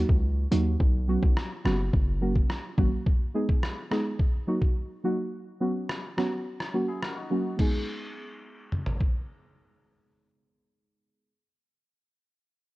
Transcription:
0.09 0.46 C#2 medium
0.09 kick medium
0.51 0.76 D#2 medium
0.51 0.63 F#3 medium
0.51 0.63 A#3 medium
0.51 0.63 D#4 medium
0.51 0.63 F#4 medium
0.51 closed hi-hat medium
0.80 1.17 B1 loud
0.80 kick loud
1.08 1.19 F#3 medium
1.08 1.19 B3 medium
1.08 1.20 C#4 medium
1.08 1.20 F#4 loud
1.22 1.35 B1 medium
1.22 kick loud
1.37 cross-stick loud
1.64 1.90 F#1 loud
1.64 1.76 F#3 medium
1.64 1.76 B3 medium
1.64 1.76 C#4 medium
1.64 1.76 F#4 loud
1.64 cross-stick medium
1.93 2.43 F#1 loud
1.93 kick loud
2.21 2.32 F#3 medium
2.21 2.33 A#3 medium
2.21 2.33 C#4 medium
2.21 2.33 F#4 medium
2.36 kick medium
2.50 cross-stick medium
2.77 2.90 G#1 medium
2.77 2.89 F#3 medium
2.77 2.89 A#3 medium
2.77 2.89 C#4 medium
2.77 2.89 F#4 medium
2.77 kick medium
3.06 kick loud
3.34 3.46 G#3 medium
3.34 3.46 B3 medium
3.34 3.46 D#4 medium
3.34 3.46 G#4 medium
3.49 kick loud
3.63 cross-stick loud
3.91 4.02 G#3 medium
3.91 4.02 B3 medium
3.91 4.03 D#4 medium
3.91 4.03 G#4 loud
3.91 cross-stick medium
4.20 kick loud
4.47 4.59 F#3 medium
4.47 4.59 A#3 medium
4.47 4.59 D#4 medium
4.47 4.59 F#4 loud
4.62 kick medium
5.04 5.15 F#3 medium
5.04 5.16 A#3 medium
5.04 5.16 D#4 medium
5.04 5.16 F#4 medium
5.60 5.72 F#3 medium
5.60 5.72 B3 medium
5.60 5.72 C#4 medium
5.60 5.72 F#4 medium
5.89 cross-stick medium
6.17 6.29 F#3 medium
6.17 6.29 B3 medium
6.17 6.29 C#4 medium
6.17 6.29 F#4 medium
6.17 cross-stick medium
6.60 cross-stick medium
6.73 6.85 F#3 medium
6.73 6.85 A#3 medium
6.73 6.85 C#4 medium
6.73 6.86 F#4 loud
6.88 7.02 E4 medium
6.88 7.02 G#4 medium
7.03 7.15 F#4 medium
7.03 7.16 A#4 medium
7.03 cross-stick medium
7.17 7.57 D#4 medium
7.17 7.57 F#4 medium
7.30 7.42 F#3 medium
7.30 7.42 A#3 medium
7.30 7.42 C#4 medium
7.30 7.42 F#4 medium
7.57 11.30 G#3 medium
7.57 11.31 B3 medium
7.57 11.32 D#4 medium
7.57 11.32 G#4 medium
7.57 kick loud
7.57 crash medium
8.72 mid tom medium
8.86 floor tom medium
9.01 kick medium

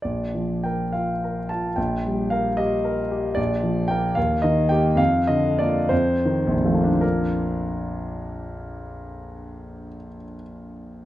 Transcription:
0.02 1.73 A#1 soft
0.02 0.64 D5 medium
0.35 0.83 F3 soft
0.64 1.12 A#4 soft
0.64 0.94 G5 medium
0.92 1.39 F4 soft
0.92 1.49 F5 medium
1.24 1.67 A#4 soft
1.49 1.78 F4 soft
1.49 1.77 A5 medium
1.76 3.34 A#1 medium
1.76 2.31 G5 medium
2.05 2.48 G3 soft
2.30 2.75 A#4 soft
2.30 2.58 F5 medium
2.57 3.01 G4 soft
2.57 3.37 D#5 medium
2.85 3.27 A#4 soft
3.11 3.38 G4 soft
3.35 4.13 A#1 medium
3.35 3.88 D5 medium
3.63 4.06 F3 soft
3.88 4.14 A#3 soft
3.88 4.14 A#4 soft
3.88 4.15 G5 medium
4.15 4.97 D#2 medium
4.15 4.42 F5 medium
4.42 4.88 D#3 medium
4.42 4.70 D#5 medium
4.69 4.96 A#3 soft
4.69 4.96 G4 soft
4.69 4.98 G5 medium
4.95 5.86 F2 medium
4.95 5.28 F5 medium
5.27 5.78 D3 medium
5.27 5.58 D#5 medium
5.59 5.88 A#3 soft
5.59 5.88 F4 soft
5.59 5.91 D5 medium
5.89 6.54 F2 medium
5.89 7.02 C5 medium
6.25 6.88 D#3 soft
6.47 9.88 A#1 medium
6.56 9.96 F2 soft
6.65 10.06 F3 soft
6.65 6.99 A3 soft
6.65 6.92 F4 soft
6.74 10.15 A#3 soft
6.84 10.24 D4 soft
6.93 10.34 F4 soft
7.01 10.42 A#4 medium

